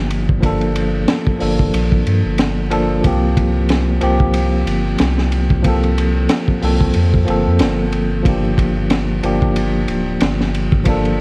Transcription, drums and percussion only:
0.10 ride
0.29 kick
0.43 kick, ride
0.61 ride
0.76 ride
1.08 snare, ride
1.27 kick
1.40 open hi-hat
1.59 kick
1.74 ride
1.92 kick
2.07 ride
2.38 snare, ride
2.71 ride
3.04 kick, ride
3.37 kick, ride
3.69 snare, ride
4.01 ride
4.20 kick
4.34 ride
4.67 ride
4.99 snare, ride
5.18 snare
5.32 ride
5.50 kick
5.64 kick, ride
5.83 ride
5.98 ride
6.29 snare, ride
6.48 kick
6.63 open hi-hat
6.81 kick
6.94 ride
7.14 kick
7.28 ride
7.59 snare, ride
7.92 ride
8.25 kick, ride
8.58 kick, ride
8.90 snare, ride
9.23 ride
9.42 kick
9.56 ride
9.88 ride
10.21 snare, ride
10.41 snare
10.54 ride
10.72 kick
10.85 kick, ride
11.05 ride

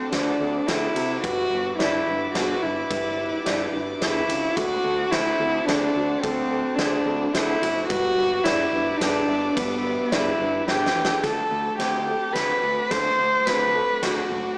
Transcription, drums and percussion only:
0.12 snare, ride
0.68 snare, ride
0.96 ride
1.24 kick, ride
1.80 snare, ride
2.35 snare, ride
2.91 kick, ride
3.46 snare, ride
4.02 snare, ride
4.29 ride
4.57 kick, ride
5.12 snare, ride
5.68 snare, ride
6.23 kick, ride
6.79 snare, ride
7.35 snare, ride
7.63 ride
7.90 kick, ride
8.45 snare, ride
9.01 snare, ride
9.57 kick, ride
10.12 snare, ride
10.68 snare
10.86 snare
11.05 snare
11.24 kick, snare, ride
11.80 snare, ride
12.35 snare, ride
12.91 kick, snare, ride
13.47 snare, ride
14.03 snare, ride

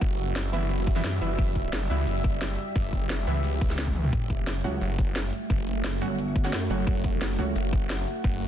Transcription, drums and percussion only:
0.01 kick, closed hi-hat
0.19 closed hi-hat
0.36 snare, closed hi-hat
0.53 closed hi-hat
0.70 closed hi-hat
0.87 kick, closed hi-hat
0.96 snare
1.04 snare, closed hi-hat
1.22 closed hi-hat
1.39 kick, closed hi-hat
1.56 kick, closed hi-hat
1.73 snare, closed hi-hat
1.90 closed hi-hat
2.07 closed hi-hat
2.24 kick, closed hi-hat
2.41 snare, closed hi-hat
2.59 closed hi-hat
2.76 kick, closed hi-hat
2.93 kick, closed hi-hat
3.10 snare, closed hi-hat
3.27 closed hi-hat
3.44 closed hi-hat
3.61 kick, closed hi-hat
3.70 snare
3.79 snare, closed hi-hat, high tom
3.87 kick, high tom
3.96 closed hi-hat, mid tom
4.04 mid tom
4.13 kick, closed hi-hat
4.30 kick, closed hi-hat
4.47 snare, closed hi-hat
4.64 closed hi-hat
4.81 closed hi-hat
4.99 kick, closed hi-hat
5.16 snare, closed hi-hat
5.33 closed hi-hat
5.50 kick, closed hi-hat
5.67 closed hi-hat
5.84 snare, closed hi-hat
6.02 closed hi-hat
6.19 closed hi-hat
6.36 kick, closed hi-hat
6.44 snare
6.53 snare, closed hi-hat
6.70 closed hi-hat
6.87 kick, closed hi-hat
7.04 kick, closed hi-hat
7.21 snare, closed hi-hat
7.39 closed hi-hat
7.56 closed hi-hat
7.73 kick, closed hi-hat
7.90 snare, closed hi-hat
8.07 closed hi-hat
8.24 kick, closed hi-hat
8.41 closed hi-hat

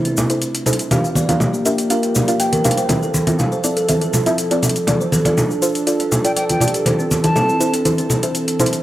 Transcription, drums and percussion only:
0.05 closed hi-hat, shaker
0.17 low conga, shaker
0.30 closed hi-hat, shaker
0.42 closed hi-hat, shaker
0.55 closed hi-hat, shaker
0.66 closed hi-hat, low conga, shaker
0.73 closed hi-hat
0.79 closed hi-hat, shaker
0.91 closed hi-hat, high conga, low conga, shaker
1.05 shaker
1.15 high conga, shaker
1.29 closed hi-hat, high conga, shaker
1.40 low conga, shaker
1.54 shaker
1.65 closed hi-hat, shaker
1.78 closed hi-hat, shaker
1.90 closed hi-hat, shaker
2.03 closed hi-hat, shaker
2.15 low conga, shaker
2.28 closed hi-hat, shaker
2.40 closed hi-hat, shaker
2.53 closed hi-hat, high conga, shaker
2.64 closed hi-hat, low conga, shaker
2.71 closed hi-hat
2.77 closed hi-hat, shaker
2.89 closed hi-hat, high conga, low conga, shaker
3.03 shaker
3.14 high conga, shaker
3.27 closed hi-hat, high conga, shaker
3.39 low conga, shaker
3.52 shaker
3.64 closed hi-hat, shaker
3.77 closed hi-hat, shaker
3.89 closed hi-hat, high conga, shaker
4.01 closed hi-hat, shaker
4.13 low conga, shaker
4.26 closed hi-hat, shaker
4.38 closed hi-hat, shaker
4.51 closed hi-hat, shaker
4.63 closed hi-hat, low conga, shaker
4.69 closed hi-hat
4.76 closed hi-hat, shaker
4.87 closed hi-hat, high conga, low conga, shaker
5.01 shaker
5.12 high conga, shaker
5.25 closed hi-hat, high conga, shaker
5.38 low conga, shaker
5.51 shaker
5.62 closed hi-hat, shaker
5.75 closed hi-hat, shaker
5.87 closed hi-hat, shaker
6.00 closed hi-hat, shaker
6.12 low conga, shaker
6.25 closed hi-hat, shaker
6.37 closed hi-hat, shaker
6.49 closed hi-hat, high conga, shaker
6.60 closed hi-hat, low conga, shaker
6.68 closed hi-hat
6.74 closed hi-hat, shaker
6.86 closed hi-hat, high conga, low conga, shaker
7.00 shaker
7.11 high conga, shaker
7.24 closed hi-hat, high conga, shaker
7.36 low conga, shaker
7.49 shaker
7.61 closed hi-hat, shaker
7.74 closed hi-hat, shaker
7.85 closed hi-hat, high conga, shaker
7.98 closed hi-hat, shaker
8.10 low conga, shaker
8.23 closed hi-hat, shaker
8.35 closed hi-hat, shaker
8.48 closed hi-hat, shaker
8.59 closed hi-hat, low conga, shaker
8.66 closed hi-hat
8.73 closed hi-hat, shaker

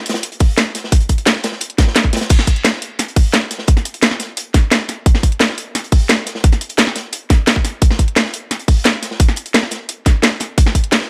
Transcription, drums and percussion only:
0.06 closed hi-hat
0.09 snare, closed hi-hat
0.14 snare, closed hi-hat
0.23 closed hi-hat
0.32 closed hi-hat
0.40 kick, closed hi-hat, open hi-hat
0.57 snare, closed hi-hat
0.75 snare, closed hi-hat
0.84 snare
0.92 kick, closed hi-hat
1.00 closed hi-hat
1.09 kick, closed hi-hat
1.18 closed hi-hat
1.26 snare, closed hi-hat
1.36 snare
1.44 snare, closed hi-hat
1.52 snare
1.61 closed hi-hat
1.70 closed hi-hat
1.78 kick, snare, closed hi-hat
1.87 snare
1.95 snare, closed hi-hat
2.04 kick
2.13 snare, closed hi-hat
2.17 snare, closed hi-hat
2.21 snare, closed hi-hat
2.29 kick, closed hi-hat, crash
2.39 snare
2.47 kick, closed hi-hat
2.56 closed hi-hat
2.64 snare, closed hi-hat
2.73 snare
2.82 closed hi-hat
2.99 snare, closed hi-hat
3.08 closed hi-hat
3.16 kick, closed hi-hat, open hi-hat
3.33 snare, closed hi-hat
3.51 snare, closed hi-hat
3.59 snare
3.68 kick, closed hi-hat
3.77 snare, closed hi-hat
3.85 closed hi-hat
3.94 closed hi-hat
4.02 snare, closed hi-hat
4.10 snare
4.20 snare, closed hi-hat
4.37 closed hi-hat
4.54 kick, snare, closed hi-hat
4.71 snare, closed hi-hat
4.89 snare, closed hi-hat
5.06 kick, closed hi-hat
5.14 snare
5.23 kick, closed hi-hat
5.32 closed hi-hat
5.40 snare, closed hi-hat
5.50 snare
5.58 closed hi-hat
5.75 snare, closed hi-hat
5.84 closed hi-hat
5.92 kick, closed hi-hat, open hi-hat
6.09 snare, closed hi-hat
6.26 snare, closed hi-hat
6.35 snare
6.44 kick, closed hi-hat
6.52 snare, closed hi-hat
6.61 closed hi-hat
6.69 closed hi-hat
6.78 snare, closed hi-hat
6.87 snare
6.96 snare, closed hi-hat
7.13 closed hi-hat
7.30 kick, snare, closed hi-hat
7.47 snare, closed hi-hat
7.56 kick
7.65 snare, closed hi-hat
7.82 kick, closed hi-hat
7.90 snare
7.99 kick, closed hi-hat
8.08 closed hi-hat
8.16 snare, closed hi-hat
8.25 snare
8.34 closed hi-hat
8.51 snare, closed hi-hat
8.59 closed hi-hat
8.68 kick, closed hi-hat, open hi-hat
8.84 snare, closed hi-hat
9.02 snare, closed hi-hat
9.11 snare
9.20 kick, closed hi-hat
9.28 snare, closed hi-hat
9.36 closed hi-hat
9.46 closed hi-hat
9.54 snare, closed hi-hat
9.63 snare
9.71 snare, closed hi-hat
9.89 closed hi-hat
10.06 kick, snare, closed hi-hat
10.22 snare, closed hi-hat
10.40 snare, closed hi-hat
10.58 kick, closed hi-hat
10.66 snare
10.75 kick, closed hi-hat
10.84 closed hi-hat
10.92 snare, closed hi-hat
11.01 snare

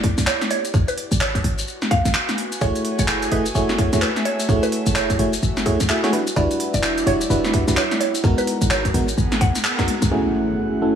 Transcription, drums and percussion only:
0.04 kick, open hi-hat
0.18 snare, closed hi-hat, shaker
0.27 clap, shaker
0.41 snare, closed hi-hat, shaker
0.51 open hi-hat
0.65 closed hi-hat, shaker
0.74 kick, shaker
0.88 closed hi-hat, shaker
0.98 open hi-hat
1.12 closed hi-hat, shaker
1.21 clap, shaker
1.35 kick, closed hi-hat, shaker
1.44 open hi-hat
1.59 open hi-hat, shaker
1.68 shaker
1.82 snare, shaker
1.91 kick, open hi-hat
2.05 snare, closed hi-hat, shaker
2.15 clap, shaker
2.29 snare, closed hi-hat, shaker
2.38 open hi-hat
2.52 closed hi-hat, shaker
2.61 kick, shaker
2.76 closed hi-hat, shaker
2.85 open hi-hat
2.99 closed hi-hat, shaker
3.08 clap, shaker
3.22 closed hi-hat, shaker
3.32 open hi-hat
3.46 closed hi-hat, shaker
3.55 shaker
3.69 snare, shaker
3.78 kick, open hi-hat
3.93 snare, closed hi-hat, shaker
4.02 clap, shaker
4.16 snare, closed hi-hat, shaker
4.25 open hi-hat
4.40 closed hi-hat, shaker
4.49 kick, shaker
4.63 closed hi-hat, shaker
4.72 open hi-hat
4.86 closed hi-hat, shaker
4.96 clap, shaker
5.10 kick, closed hi-hat, shaker
5.19 open hi-hat
5.33 open hi-hat, shaker
5.43 shaker
5.57 snare, shaker
5.66 kick, open hi-hat
5.80 snare, closed hi-hat, shaker
5.90 clap, shaker
6.04 snare, closed hi-hat, shaker
6.13 open hi-hat
6.27 closed hi-hat, shaker
6.36 kick, shaker
6.51 closed hi-hat, shaker
6.60 open hi-hat
6.74 closed hi-hat, shaker
6.83 clap, shaker
6.98 closed hi-hat, shaker
7.07 open hi-hat
7.21 closed hi-hat, shaker
7.30 shaker
7.45 snare, shaker
7.54 kick, open hi-hat
7.68 snare, closed hi-hat, shaker
7.77 clap, shaker
7.91 snare, closed hi-hat, shaker
8.01 open hi-hat
8.15 closed hi-hat, shaker
8.24 kick, shaker
8.38 closed hi-hat, shaker
8.47 open hi-hat
8.62 closed hi-hat, shaker
8.71 clap, shaker
8.85 kick, closed hi-hat, shaker
8.94 open hi-hat
9.08 open hi-hat, shaker
9.18 shaker
9.32 snare, closed hi-hat, shaker
9.41 kick, open hi-hat
9.55 snare, closed hi-hat, shaker
9.65 clap, shaker
9.79 kick, snare, closed hi-hat, shaker
9.88 open hi-hat
10.02 closed hi-hat, shaker
10.49 closed hi-hat
10.72 closed hi-hat

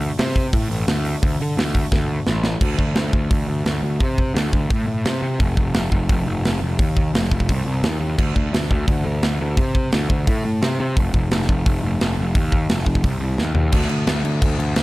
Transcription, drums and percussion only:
0.01 open hi-hat
0.19 snare, open hi-hat
0.29 snare
0.36 kick, open hi-hat
0.53 kick, open hi-hat
0.71 open hi-hat
0.88 snare, open hi-hat
1.05 open hi-hat
1.23 kick, open hi-hat
1.41 open hi-hat
1.58 snare, open hi-hat
1.68 snare
1.75 kick, open hi-hat
1.92 kick, snare
2.27 snare
2.44 snare
2.61 kick, crash
2.79 kick
2.95 snare, open hi-hat
3.13 kick
3.31 kick, open hi-hat
3.66 snare, open hi-hat
4.00 kick, open hi-hat
4.18 kick
4.36 snare, open hi-hat
4.53 kick
4.70 kick, open hi-hat
5.05 snare, open hi-hat
5.40 kick, open hi-hat
5.57 kick
5.74 snare, open hi-hat
5.92 kick
6.09 kick, open hi-hat
6.45 snare, open hi-hat
6.79 kick, open hi-hat
6.97 kick
7.15 snare, open hi-hat
7.24 snare
7.31 kick
7.40 kick
7.49 kick, open hi-hat
7.83 snare, open hi-hat
8.19 kick, crash
8.36 kick
8.54 snare, open hi-hat
8.63 snare
8.71 kick
8.88 kick, open hi-hat
9.23 snare, open hi-hat
9.57 kick, open hi-hat
9.75 kick
9.92 snare, open hi-hat
10.10 kick
10.27 kick, open hi-hat
10.62 snare, open hi-hat
10.97 kick, open hi-hat
11.14 kick
11.31 snare, open hi-hat
11.42 snare
11.49 kick
11.66 kick, open hi-hat
12.01 snare, open hi-hat
12.35 kick, open hi-hat
12.52 kick
12.69 snare, open hi-hat
12.78 snare
12.86 kick
12.95 kick
13.04 kick, open hi-hat
13.38 snare
13.55 floor tom
13.72 kick, crash
13.82 snare
13.89 crash
14.07 snare, crash
14.25 crash
14.42 kick, crash
14.60 crash
14.76 snare, crash

